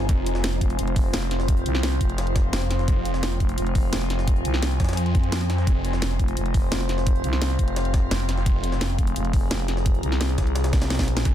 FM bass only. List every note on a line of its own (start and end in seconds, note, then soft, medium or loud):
0.61 0.77 F1 loud
0.79 1.12 F1 loud
1.14 1.65 F1 loud
1.66 1.99 C2 loud
2.01 2.52 F1 loud
3.40 3.56 F1 loud
3.58 3.91 F1 loud
3.93 4.44 F1 loud
4.45 4.79 C2 loud
6.19 6.35 F1 loud
6.37 6.70 F1 loud
6.72 7.23 F1 loud
7.24 7.58 C2 medium
7.59 8.10 F1 loud
8.99 9.15 F1 loud
9.16 9.49 F1 loud
9.51 10.02 F1 loud
10.03 10.37 C2 loud
10.38 10.99 C2 loud
10.99 11.24 B1 loud